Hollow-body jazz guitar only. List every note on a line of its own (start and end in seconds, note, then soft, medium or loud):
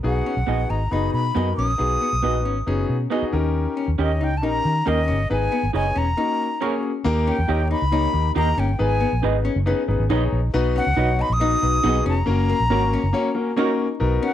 0.26 0.39 C#4 medium
0.70 0.83 D#4 medium
0.93 1.33 D#4 medium
1.36 1.49 B3 medium
1.59 1.71 C#4 medium
2.01 2.14 B3 medium
2.45 2.58 C#4 medium
2.67 3.08 C#4 medium
3.11 3.52 D#4 medium
3.77 3.90 C#4 medium
4.21 4.34 D#4 medium
4.43 4.84 D#4 medium
4.86 4.99 A#3 medium
5.08 5.21 C#4 medium
5.52 5.65 B3 medium
5.95 6.08 C#4 medium
6.17 6.58 D#4 medium
6.62 7.02 C#4 medium
7.27 7.40 C#4 medium
7.71 7.84 D#4 medium
7.92 8.33 D#4 medium
8.36 8.49 A#3 medium
8.58 8.71 C#4 medium
9.01 9.14 B3 medium
9.45 9.58 C#4 medium
9.67 10.08 C#4 medium
10.10 10.51 D#4 medium
10.76 10.88 C#4 medium
11.19 11.32 D#4 medium
11.41 11.81 D#4 loud
11.85 11.97 B3 medium
12.06 12.19 C#4 medium
12.49 12.62 A#3 medium
12.93 13.06 C#4 medium
13.15 13.55 C#4 medium
13.57 13.98 D#4 medium
14.23 14.34 C#4 medium